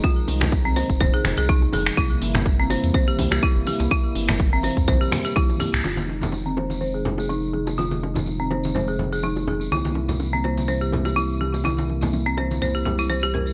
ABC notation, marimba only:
X:1
M:4/4
L:1/16
Q:"Swing 16ths" 1/4=124
K:Fm
V:1 name="Marimba"
F z4 C c z c A z A E z A z | =E z4 C c z c G z G E z G z | =E z4 C c z c G z G E z G z | F z4 C c z c A z A E z A z |
F z4 C c z c A z A E z A z | =E z4 C c z c G z G E z G z | =E z4 C c z c G G E c G B z |]